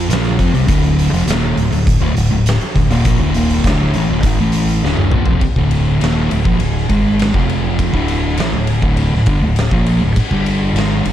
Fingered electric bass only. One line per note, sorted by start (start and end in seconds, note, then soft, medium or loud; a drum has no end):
0.09 0.37 A#1 medium
0.39 0.53 F2 loud
0.54 0.68 C2 loud
0.69 1.10 D1 loud
1.13 1.27 F1 loud
1.27 1.55 D#1 medium
1.58 1.72 D1 medium
1.73 2.00 D1 medium
2.01 2.15 D1 medium
2.17 2.31 D1 medium
2.32 2.60 D1 medium
2.76 2.90 D1 medium
2.91 3.05 D#1 loud
3.05 3.19 A#1 loud
3.20 3.34 D1 loud
3.36 3.63 D#1 loud
3.65 3.92 D1 loud
3.95 4.08 A1 loud
4.10 4.23 D#1 loud
4.24 4.38 G#1 loud
4.40 4.81 A1 medium
4.84 5.11 D1 medium
5.14 5.27 A#1 medium
5.28 5.41 F1 medium
5.56 5.98 D1 loud
6.03 6.30 D#1 medium
6.32 6.45 D1 medium
6.45 6.59 A#1 medium
6.60 6.88 D1 medium
6.89 7.31 G#1 medium
7.35 7.90 F1 medium
7.93 8.35 D1 medium
8.38 8.52 A1 medium
8.53 8.81 D1 medium
8.82 9.10 D1 loud
9.13 9.26 D1 medium
9.26 9.41 G1 loud
9.42 9.70 D1 medium
9.72 10.00 A#1 loud
10.01 10.15 D1 medium
10.16 muted fingered electric bass stroke soft
10.31 10.72 G1 medium
10.74 11.02 G#1 medium
11.05 11.13 G1 medium